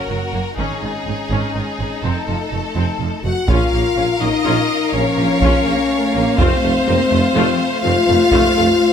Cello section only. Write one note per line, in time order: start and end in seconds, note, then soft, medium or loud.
0.10 0.18 F#2 soft
0.33 0.41 F#2 soft
0.58 0.66 G#2 soft
0.82 0.90 G#2 soft
1.07 1.15 G#2 soft
1.31 1.39 G#2 medium
1.55 1.63 G#2 soft
1.79 1.87 G#2 soft
2.03 2.11 F2 soft
2.28 2.36 F2 soft
2.52 2.60 F2 soft
2.75 2.83 F2 soft
3.00 3.08 F2 soft
3.24 3.32 F2 soft
4.94 5.62 F3 medium
5.66 5.90 A#3 medium
5.90 6.14 A3 medium
6.15 6.39 A#3 medium
6.38 6.63 C4 medium
6.62 6.86 A3 medium
6.87 7.11 A#3 medium
7.10 7.35 A3 medium
7.34 7.59 F3 medium
7.59 8.93 A3 medium